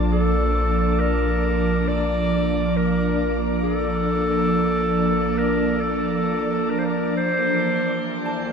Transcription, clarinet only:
0.12 A4
0.99 A#4
1.88 D5
2.77 A#4
3.63 A4
5.38 A#4
5.81 A4
6.70 A#4
6.78 C5
6.85 A#4
7.17 C5

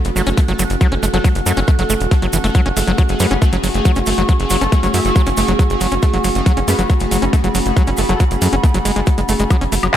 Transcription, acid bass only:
0.16 F#3
0.27 C#4
0.37 A3
0.48 F#3
0.59 F#3
0.81 F#3
0.92 C#4
1.03 A3
1.14 F#3
1.24 F#3
1.46 F#3
1.57 C#4
1.68 A3
1.79 F#3
1.90 A3
2.11 F#3
2.22 F#3
2.33 E3
2.44 A3
2.55 F#3
2.66 C#4
2.77 A3
2.87 F#3
2.98 F#3
3.20 F#3
3.31 C#4
3.42 A3
3.53 F#3
3.64 F#3
3.85 F#3
3.96 C#4
4.07 A3
4.18 F#3
4.29 F#3
4.51 F#3
4.61 C#4
4.72 A3
4.83 F#3
4.94 F#3
5.16 F#3
5.27 C#4
5.37 A3
5.48 F#3
5.59 F#3
5.81 F#3
5.92 C#4
6.03 A3
6.14 F#3
6.24 F#3
6.46 F#3
6.57 C#4
6.68 A3
6.79 F#3
6.90 F#3
7.11 F#3
7.22 C#4
7.33 A3
7.44 F#3
7.55 F#3
7.77 F#3
7.87 C#4
7.98 A3
8.09 F#3
8.20 F#3
8.42 F#3
8.53 C#4
8.64 A3
8.74 F#3
8.85 G#3
8.96 G#3
9.07 F#3
9.18 G#3
9.29 A3
9.40 G#3
9.51 F#3
9.61 C#4
9.72 A3
9.83 F#3

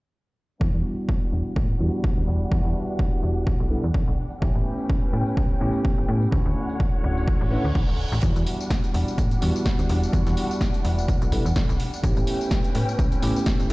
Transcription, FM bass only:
0.61 E2
0.74 E2
1.32 E1
1.56 A2
1.80 E2
2.17 D2
2.28 E1
2.52 E2
2.65 E2
3.23 E1
3.47 D2
3.60 B1
3.84 E2
4.07 B1
4.42 A1
4.55 A1
5.13 A2
5.37 C#2
5.61 A1
5.98 G1
6.08 A2
6.32 D2
6.45 D2
7.04 D1
7.27 A1
7.41 A1
7.65 D2
7.75 A1
7.88 D1
8.12 A1
8.23 E2
8.36 E2
8.94 E1
9.18 A2
9.42 E2
9.79 D2
9.90 E1
10.13 E2
10.26 E2
10.85 E1
11.08 D2
11.22 B1
11.45 E2
11.69 B1
12.03 A1
12.17 A1
12.75 A2
12.99 C#2
13.23 A1
13.60 G1

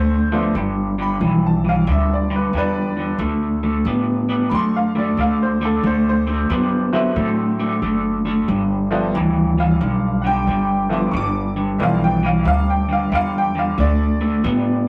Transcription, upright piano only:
Already playing: C5
0.32 F3 A3 B3 D4
1.02 B5
1.46 A5
1.69 F5
1.91 E5
2.13 D5
2.36 B4
2.57 B4 D5
4.50 B5
4.55 C6
4.76 F5
4.99 D5
5.21 F5
5.43 C5
5.65 A4
5.87 C5
6.09 C5
6.93 F#3 A3 C4 E4
8.91 F3 A3 B3 D4
9.60 F5
10.22 F#5
10.27 G5
10.89 F3 A3 B3 E4 D6
11.11 C#6
11.17 D6
11.78 F3 A3 B3 D4 E5
11.83 F5
12.04 G5
12.26 F5
12.43 E5
12.48 F5
12.70 G5
12.93 F5
13.10 E5
13.15 F5
13.38 G5
13.59 F5
13.80 D5

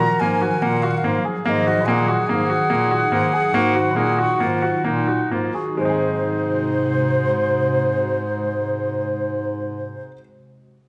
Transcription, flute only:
Already playing: A#5
0.20 G#5
0.62 F#5
0.82 F5
0.91 F#5
0.97 F5
1.45 F5
1.49 D#5
1.86 G#5
1.90 F#5
2.27 G#5
2.31 F5
2.47 F#5
5.77 C5

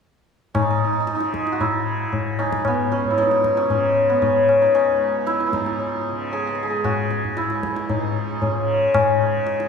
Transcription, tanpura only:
0.54 G#2
1.16 C#3
1.79 C#3
2.41 C#2
3.02 G#2
3.65 C#3
4.27 C#3
4.88 C#2
5.51 G#2
6.12 C#3
6.74 C#3
7.34 C#2
7.96 G#2
8.58 C#3
9.21 C#3

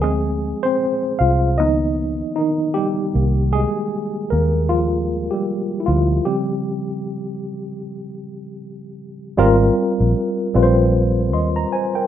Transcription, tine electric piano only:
0.02 F3 G#3 C4 G#4
0.63 C4 C5
1.19 F4 F5
1.58 D#3 F3 A#3 B3 D#4 D#5
2.36 D#3 D#4
2.74 G3 G4
3.15 D#3 A#3
3.53 G#3 G#4
4.30 A#3 A#4
4.69 F3 F4
5.31 G3 G4
5.80 E4
5.86 F3 F4
6.25 C#3 F3 G3 C4 G4
9.37 G3 C4 F4 A#4
10.54 G3 C4 F4 B4
10.63 C5
11.33 D#5 C6
11.56 A#5
11.73 C5 G#5
11.95 A#4 G5

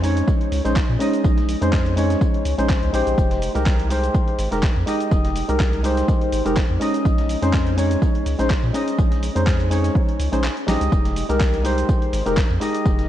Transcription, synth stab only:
0.02 G#3 C#4 D#4 C#5
0.64 G#3 C#4 D#4 C5
0.99 G#3 C#4 D#4 D#5
1.61 G#3 C#4 D#4 C5
1.96 G#3 C#4 D#4 C#5
2.58 G#3 C#4 D#4 C5
2.93 G#3 D#4 G4 C5
3.55 G#3 D#4 G4 A#4
3.89 G#3 D#4 G4 C5
4.52 G#3 D#4 G4 A#4
4.86 G#3 D#4 G4 D#5
5.48 G#3 D#4 G4 A#4
5.83 G#3 D#4 G4 C5
6.45 G#3 D#4 G4 A#4
6.80 G#3 C#4 D#4 D#5
7.42 G#3 C#4 D#4 C5
7.77 G#3 C#4 D#4 C#5
8.39 G#3 C#4 D#4 C5
8.73 G#3 C#4 D#4 D#5
9.35 G#3 C#4 D#4 C5
9.70 G#3 C#4 D#4 C#5
10.32 G#3 C#4 D#4 C5
10.67 G#3 D#4 G4 D#5
11.29 G#3 D#4 G4 A#4
11.63 G#3 D#4 G4 C5
12.26 G#3 D#4 G4 A#4
12.60 G#3 D#4 G4 D#5

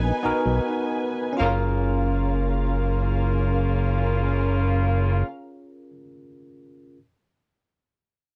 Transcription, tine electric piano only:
Already playing: B3 D#4 F#4 A#4
0.23 B3 D#4 F#4 A#4
1.33 C#4
1.37 F4
1.41 G#4
1.46 A#4

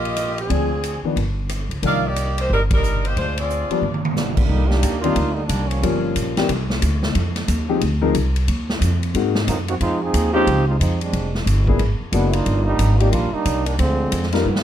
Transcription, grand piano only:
0.49 F3 G#3 C4 D4
1.05 D#3 F3 B3 D4
1.83 D#3 F3 A#3 D4
3.71 F3 G3 B3 D4
5.04 D#3 G3 A#3 C4 D4
5.83 F3 G3 A#3 C#4 F4
6.37 E3 A#3 C4 D4 G4
7.68 F3 G#3 C4 D#4 G4
8.01 F3 G#3 C4 D#4 A#4
9.15 G#3 A#3 C4 D#4 F#4
10.34 G#3 C4 C#4 D#4 F4
11.68 A#3 B3 D4 E4 G#4
12.13 A#3 B3 D4 E4 F#4
13.00 A#3 D4 D#4 F4 G4
14.33 G3 B3 D#4 F4 A#4

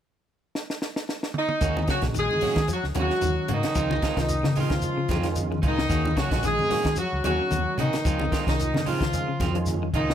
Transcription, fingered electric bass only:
1.62 D#2
2.03 A#1
2.43 muted fingered electric bass stroke
2.56 D#3
2.83 C#2
2.95 D#2
3.23 D#2
3.50 G#2
3.76 C#2
4.17 C2
4.44 C#3
5.09 F2
5.63 C#2
5.90 D#2
6.31 A#1
6.71 muted fingered electric bass stroke
6.85 D#3
7.13 C#2
7.25 D#2
7.52 D#2
7.78 C3
8.05 C#2
8.47 C2
8.74 C#3
9.40 F2
9.94 C#2

